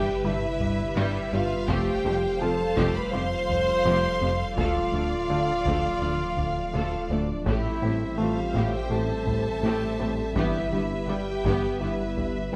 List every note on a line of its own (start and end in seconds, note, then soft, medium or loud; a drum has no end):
0.00 1.70 G1 medium
0.00 1.65 C3 medium
0.00 0.22 G3 medium
0.00 4.59 G3 medium
0.00 0.22 G4 medium
0.00 0.24 G4 loud
0.00 1.65 G4 medium
0.00 1.65 B4 medium
0.00 1.70 B4 medium
0.00 1.65 E5 medium
0.00 0.24 G5 medium
0.24 0.33 G1 medium
0.24 0.46 G2 medium
0.24 0.33 G2 medium
0.24 0.33 G3 medium
0.24 0.46 E4 medium
0.24 0.95 E4 medium
0.24 0.33 G4 medium
0.24 0.95 E5 medium
0.60 0.82 G2 medium
0.60 taiko low soft
0.96 1.05 G1 medium
0.96 1.18 G2 medium
0.96 1.05 G2 loud
0.96 1.18 E3 medium
0.96 1.30 G3 medium
0.96 1.32 E4 loud
0.96 1.30 G4 medium
0.96 1.33 E5 medium
1.32 1.41 G1 medium
1.32 1.41 G2 medium
1.32 1.55 G2 medium
1.32 1.40 G3 medium
1.32 1.55 G3 medium
1.32 1.69 F4 loud
1.32 1.40 G4 medium
1.32 1.69 F5 medium
1.68 4.59 F1 medium
1.68 1.77 F1 loud
1.68 1.90 F2 medium
1.68 1.77 F2 medium
1.68 7.47 F3 medium
1.68 1.91 F3 loud
1.68 2.02 A3 loud
1.68 7.47 F4 medium
1.68 2.03 G4 medium
1.68 2.42 G4 loud
1.68 7.47 A4 medium
1.68 4.54 C5 medium
1.68 7.27 F5 medium
1.68 2.42 G5 medium
1.68 taiko loud
2.04 2.12 F1 medium
2.04 2.27 F2 medium
2.04 2.13 F2 medium
2.04 2.13 A3 medium
2.04 2.27 A3 medium
2.04 2.13 G4 medium
2.41 2.49 F1 medium
2.41 2.50 F2 medium
2.41 2.63 F3 medium
2.41 2.49 A3 medium
2.41 2.63 C4 medium
2.41 2.49 F4 medium
2.41 2.95 A4 loud
2.41 2.96 A5 medium
2.77 2.85 F1 medium
2.77 2.98 F2 medium
2.77 2.85 F2 medium
2.77 2.99 F3 medium
2.77 3.11 A3 medium
2.77 3.11 G4 medium
2.77 taiko medium
2.95 3.14 B4 loud
2.95 3.13 B5 medium
3.11 3.21 F1 medium
3.11 3.35 F2 medium
3.11 3.22 F2 medium
3.11 3.21 A3 medium
3.11 3.35 F4 medium
3.11 3.21 G4 medium
3.11 4.39 C5 loud
3.11 4.58 C6 loud
3.49 3.71 F2 medium
3.49 taiko low medium
3.85 3.94 F1 medium
3.85 4.07 F2 medium
3.85 3.94 F2 medium
3.85 4.07 F3 medium
3.85 4.20 A3 medium
3.85 4.20 G4 medium
4.22 4.30 F1 medium
4.22 4.30 F2 medium
4.22 4.44 F2 medium
4.22 4.43 A3 medium
4.22 4.31 A3 medium
4.22 4.30 G4 medium
4.56 7.49 D1 medium
4.56 4.80 D2 medium
4.56 4.66 D2 medium
4.56 4.80 D3 loud
4.56 4.92 A3 medium
4.56 7.48 A3 medium
4.56 7.06 F4 loud
4.56 4.92 A4 medium
4.56 7.27 D5 medium
4.56 7.07 F5 medium
4.56 taiko medium
4.93 5.15 D2 medium
4.93 5.02 D2 soft
4.93 5.02 D2 medium
4.93 5.16 F3 medium
4.93 5.02 A3 soft
4.93 5.02 A4 soft
5.30 5.38 D2 medium
5.30 5.52 D3 medium
5.30 5.38 A3 soft
5.30 5.52 A3 medium
5.30 5.38 F4 soft
5.65 5.87 D2 medium
5.65 5.74 D2 medium
5.65 5.88 D3 medium
5.65 6.00 A3 medium
5.65 6.00 A4 medium
5.65 taiko medium
6.01 6.23 D2 medium
6.01 6.10 D2 soft
6.01 6.12 A3 soft
6.01 6.24 D4 medium
6.01 6.12 A4 soft
6.37 6.59 D2 medium
6.37 taiko low soft
6.73 6.96 D2 medium
6.73 6.82 D2 medium
6.73 6.97 D3 medium
6.73 7.09 A3 medium
6.73 7.09 A4 medium
7.09 7.17 D2 soft
7.09 7.32 D2 medium
7.09 7.19 D2 soft
7.09 7.33 F3 medium
7.09 7.20 A3 medium
7.09 7.46 D4 medium
7.09 7.20 A4 medium
7.09 7.47 D5 medium
7.46 7.54 A1 medium
7.46 10.38 A1 medium
7.46 7.68 A2 medium
7.46 7.55 A2 medium
7.46 12.56 G3 medium
7.46 7.69 A3 loud
7.46 7.81 A3 medium
7.46 10.37 C4 medium
7.46 8.18 E4 loud
7.46 12.56 G4 medium
7.46 7.81 G4 medium
7.46 10.33 A4 medium
7.46 10.33 C5 medium
7.46 8.18 E5 medium
7.46 12.56 E5 medium
7.46 taiko loud
7.82 7.91 A1 soft
7.82 8.04 A2 medium
7.82 7.91 A2 medium
7.82 7.94 A3 medium
7.82 8.05 C4 medium
7.82 7.93 G4 medium
8.18 8.27 A1 soft
8.18 8.28 A2 medium
8.18 8.41 E3 medium
8.18 8.28 E3 soft
8.18 8.40 A3 medium
8.18 8.29 A3 medium
8.18 8.73 F4 medium
8.18 8.73 F5 medium
8.54 8.63 A1 medium
8.54 8.76 A2 medium
8.54 8.64 A2 medium
8.54 8.77 A3 medium
8.54 8.89 A3 soft
8.54 8.90 G4 medium
8.54 taiko medium
8.73 8.91 G4 medium
8.73 8.91 G5 medium
8.89 8.99 A1 soft
8.89 9.12 A2 medium
8.89 9.00 A2 medium
8.89 9.01 A3 soft
8.89 9.13 G4 medium
8.89 9.01 G4 medium
8.89 10.35 A4 medium
8.89 10.36 A5 medium
9.26 9.48 A2 medium
9.26 taiko low soft
9.63 9.72 A1 medium
9.63 9.85 A2 medium
9.63 9.72 A2 medium
9.63 9.85 A3 medium
9.63 9.98 A3 medium
9.63 9.98 G4 medium
9.99 10.08 A1 medium
9.99 10.21 A2 medium
9.99 10.08 A2 soft
9.99 10.09 A3 medium
9.99 10.22 C4 medium
9.99 10.09 G4 soft
10.36 10.44 G1 medium
10.36 12.56 G1 medium
10.36 10.44 G2 medium
10.36 10.58 G2 medium
10.36 10.58 E3 loud
10.36 10.70 B3 medium
10.36 12.56 B3 medium
10.36 11.07 E4 loud
10.36 10.70 G4 medium
10.36 12.56 B4 medium
10.36 11.07 E5 medium
10.36 taiko medium
10.72 10.80 G1 medium
10.72 10.81 G2 soft
10.72 10.94 G2 medium
10.72 10.94 G3 medium
10.72 10.81 B3 soft
10.72 10.81 G4 soft
11.08 11.16 G1 medium
11.08 11.17 G2 medium
11.08 11.31 G3 medium
11.08 11.30 B3 medium
11.08 11.17 B3 medium
11.08 11.16 E4 soft
11.08 11.80 G4 medium
11.08 11.81 G5 medium
11.44 11.53 G1 medium
11.44 11.53 G2 medium
11.44 11.67 G2 medium
11.44 11.66 E3 medium
11.44 11.79 B3 medium
11.44 11.79 G4 medium
11.44 taiko medium
11.80 11.89 G1 medium
11.80 11.89 G2 soft
11.80 12.03 G2 medium
11.80 11.90 B3 medium
11.80 12.35 E4 medium
11.80 12.02 E4 medium
11.80 11.90 G4 soft
11.80 12.52 E5 medium
12.17 12.39 G2 medium
12.17 taiko low medium
12.52 12.56 E4 medium